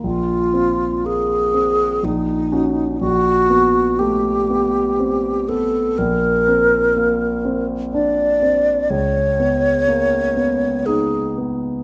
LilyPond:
<<
  \new Staff \with { instrumentName = "Alto flute" } { \time 3/4 \key bes \minor \tempo 4 = 61 f'4 aes'4 ees'4 | ges'4 g'4. a'8 | bes'4. r8 d''4 | des''2 aes'8 r8 | }
  \new Staff \with { instrumentName = "Grand piano" } { \time 3/4 \key bes \minor bes,,8 c'8 bes8 c'8 bes,,8 <des' ges'>8 | bes,,8 ces'8 a8 ces'8 c'8 ces'8 | bes,,8 c'8 bes8 c'8 d'8 c'8 | des,8 ces'8 bes8 ces'8 ees'8 ces'8 | }
>>